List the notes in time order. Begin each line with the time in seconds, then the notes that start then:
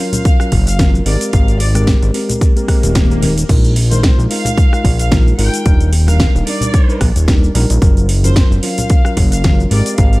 Already playing: F5
0.00 F#3 C#4 F4 A#4
0.13 closed hi-hat, high bongo, low conga, cabasa
0.25 kick, closed hi-hat, cabasa
0.40 F#3 C#4 F4 A#4, cross-stick, cabasa
0.52 F#1, kick, open hi-hat, low conga
0.67 F5, closed hi-hat, cabasa
0.79 F#3 C#4 F4 A#4, kick, snare, closed hi-hat, high conga, cabasa
0.95 cabasa
1.06 G#1 G#3 C4 G4 A#4 D5, open hi-hat
1.21 closed hi-hat, cabasa
1.32 G#1 G#3 C4 G4 A#4 F5, kick, closed hi-hat, cabasa
1.48 closed hi-hat, cabasa
1.60 D5, open hi-hat, high bongo
1.75 G#3 C4 G4 A#4 D5, cross-stick, closed hi-hat, high conga, cabasa
1.87 kick, snare, closed hi-hat, cabasa
2.02 G#1, closed hi-hat, cabasa
2.13 G#3 C4 G4 A#4, open hi-hat
2.29 closed hi-hat, high bongo, low conga, cabasa
2.41 kick, closed hi-hat, swell, cabasa
2.56 G#3 C4 G4 A#4, closed hi-hat, cabasa
2.68 G#3 C4 G4 A#4, kick, cross-stick, open hi-hat
2.83 D#1, closed hi-hat, cabasa
2.95 kick, snare, closed hi-hat, cabasa
3.10 G#3 C4 G4 A#4, cabasa
3.22 open hi-hat, high conga, low conga
3.38 closed hi-hat, cabasa
3.49 A#1 G#3 D#4 F4 A#4, kick, closed hi-hat, crash, cabasa
3.65 closed hi-hat, cabasa
3.76 open hi-hat, high bongo
3.91 G#3 D#4 F4 A#4 C5, closed hi-hat, high conga, cabasa
4.03 kick, snare, closed hi-hat, cabasa
4.18 A#1, cabasa
4.30 G#3 D#4 F4 A#4 F5, open hi-hat
4.45 closed hi-hat, high bongo, low conga, cabasa
4.58 kick, closed hi-hat, cabasa
4.72 G#3 D#4 F4 A#4, cross-stick, cabasa
4.84 A#1, kick, open hi-hat, low conga
4.99 F5, closed hi-hat, cabasa
5.11 G#3 D#4 F4 A#4, kick, snare, closed hi-hat, high conga, cabasa
5.27 cabasa
5.38 G#1 G#3 D#4 F4 A#4 G5, open hi-hat
5.54 closed hi-hat, cabasa
5.65 D#1 G3 D4 D#4 A#4, kick, closed hi-hat, cabasa
5.81 closed hi-hat, cabasa
5.93 open hi-hat, high bongo
6.07 G3 D4 D#4 A#4 F5, cross-stick, closed hi-hat, high conga, cabasa
6.20 kick, snare, closed hi-hat, cabasa
6.35 D#1, cabasa
6.46 G3 D4 D#4 A#4 D5, open hi-hat
6.61 closed hi-hat, high bongo, low conga, cabasa
6.74 kick, closed hi-hat, cabasa
6.88 G3 D4 D#4 A#4, cabasa
7.01 A#1, kick, cross-stick, open hi-hat
7.16 D#1, closed hi-hat, cabasa
7.28 G3 D4 D#4 A#4, kick, snare, closed hi-hat, cabasa
7.44 cabasa
7.55 A#1 G3 D4 D#4 A#4, open hi-hat
7.70 A#1, closed hi-hat, cabasa
7.82 F#1 F#3 C#4 F4 A#4, kick, closed hi-hat, cabasa
7.97 closed hi-hat, cabasa
8.09 open hi-hat, high bongo
8.24 F#3 C#4 F4 A#4 C5, closed hi-hat, high conga, cabasa
8.36 kick, snare, closed hi-hat, cabasa
8.51 F#1, cabasa
8.62 F#3 C#4 F4 A#4 F5, open hi-hat
8.78 closed hi-hat, high bongo, low conga, cabasa
8.90 kick, closed hi-hat, cabasa
9.05 F#3 C#4 F4 A#4, cross-stick, cabasa
9.17 F#1, kick, open hi-hat, low conga
9.32 F5, closed hi-hat, cabasa
9.44 F#3 C#4 F4 A#4, kick, snare, closed hi-hat, high conga, cabasa
9.60 cabasa
9.71 G#1 G#3 C4 G4 A#4 D5, open hi-hat
9.86 closed hi-hat, cabasa
9.98 G#1 G#3 C4 G4 A#4 F5, kick, closed hi-hat, cabasa
10.13 closed hi-hat, cabasa